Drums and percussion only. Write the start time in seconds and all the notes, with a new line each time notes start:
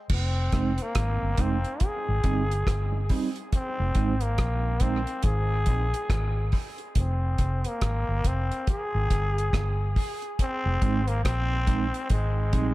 0.09 kick, crash
0.52 kick, cross-stick, closed hi-hat
0.78 closed hi-hat
0.95 kick, cross-stick, closed hi-hat
1.37 kick, closed hi-hat
1.64 closed hi-hat
1.80 kick, closed hi-hat
2.24 kick, closed hi-hat
2.51 closed hi-hat
2.67 kick, cross-stick, closed hi-hat
3.09 kick, open hi-hat
3.36 closed hi-hat
3.52 kick, closed hi-hat
3.95 kick, closed hi-hat
4.21 closed hi-hat
4.38 kick, cross-stick, closed hi-hat
4.80 kick, closed hi-hat
5.07 closed hi-hat
5.23 kick, closed hi-hat
5.66 kick, closed hi-hat
5.94 closed hi-hat
6.10 kick, cross-stick, closed hi-hat
6.52 kick, open hi-hat
6.78 closed hi-hat
6.95 kick, closed hi-hat
7.38 kick, closed hi-hat
7.64 closed hi-hat
7.81 kick, cross-stick, closed hi-hat
8.24 kick, closed hi-hat
8.52 closed hi-hat
8.67 kick, closed hi-hat
9.10 kick, closed hi-hat
9.38 closed hi-hat
9.53 kick, cross-stick, closed hi-hat
9.96 kick, open hi-hat
10.22 closed hi-hat
10.39 kick, closed hi-hat
10.82 kick, closed hi-hat
11.08 closed hi-hat
11.25 kick, cross-stick, closed hi-hat
11.67 kick, closed hi-hat
11.94 closed hi-hat
12.10 kick, closed hi-hat
12.53 kick, closed hi-hat